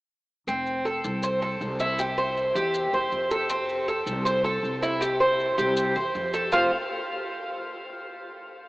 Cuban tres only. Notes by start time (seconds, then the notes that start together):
0.48 C4
0.85 A4
1.23 C5
1.42 A4
1.80 E4
1.99 G4
2.18 C5
2.55 G4
2.94 C5
3.31 A4
3.50 C4
3.88 A4
4.25 C5
4.44 A4
4.83 E4
5.01 G4
5.20 C5
5.58 G4
5.96 C5
6.34 A4
6.52 F4 C5 F5